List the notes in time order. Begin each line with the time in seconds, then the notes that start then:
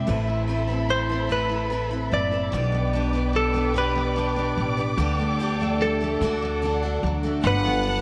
Already playing: C3 G3 C4 E4 E5
0.07 A1 A2 A3 C4 E4 A4 B4 B5
0.27 E4
0.48 A3 C4 E4 B4
0.67 C4 E4 B4
0.89 C4 C5
1.09 C4 E4 B4
1.29 A2 A3 C4 E4 B4
1.49 E4
1.70 A3 C4 E4 B4
1.91 C4 E4 B4
2.12 F#1 C4 D5
2.31 E4 B4
2.35 C4
2.52 B1 B2 B3 D4 G4 B4 D5 G5 D6
2.72 B3
2.93 B3 D4 G4 B4
3.13 B3 G4 B4
3.17 D4
3.33 G3 A4
3.54 B3 D4 G4 B4
3.74 B2 B3 D4 G4 B4
3.95 B3
4.16 B3 D4 G4 B4
4.36 B3 D4 G4 B4
4.57 A1 G3
4.77 B3 D4 G4 B4
4.97 D2 D3 G3 G4 A4 G5
5.19 A3
5.39 D3 G3 D4 G4 A4
5.60 G3 A3 G4 A4
5.81 G3 A4
6.01 G3 A3 G4 A4
6.21 D2 D3 D4 F#4 A4 F#5
6.42 A3
6.62 D3 D4 F#4 A4
6.83 A3 D4 F#4 A4
7.03 D2 F#3
7.23 A3 D4 F#4 A4
7.42 G1 G2 F#5
7.47 B4
7.65 B3
7.85 D4